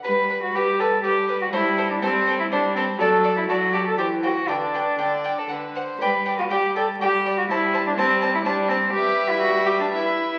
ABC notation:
X:1
M:3/4
L:1/16
Q:1/4=122
K:G
V:1 name="Violin"
B2 B2 B2 B2 B2 B2 | c2 c2 c2 c2 c2 c2 | d2 d2 d2 d2 g2 g2 | g2 g2 g2 g2 f2 f2 |
g2 g2 g2 g2 g2 g2 | a2 a2 a2 a2 a2 a2 | [K:Edor] e8 e4 |]
V:2 name="Violin"
B2 B2 B2 B2 B2 B2 | A2 A2 A2 A2 A2 A2 | A2 A2 A2 A2 c2 c2 | B2 B2 d3 A B2 c2 |
d2 d2 d2 d2 d2 d2 | c2 c2 c2 c2 c2 c2 | [K:Edor] B8 B4 |]
V:3 name="Cello"
B3 F G2 A2 G3 F | E3 D C3 E D2 C2 | A3 E F2 G A G2 F2 | D8 z4 |
B3 F G2 A2 G3 F | E3 D C3 E D2 C2 | [K:Edor] G3 E F2 G D E3 E |]
V:4 name="Viola" clef=bass
G,4 G,4 G,4 | G,4 G,4 G,4 | F,4 F,4 E,4 | D,4 D,4 D,4 |
G,4 G,4 G,4 | G,4 G,4 G,4 | [K:Edor] G,12 |]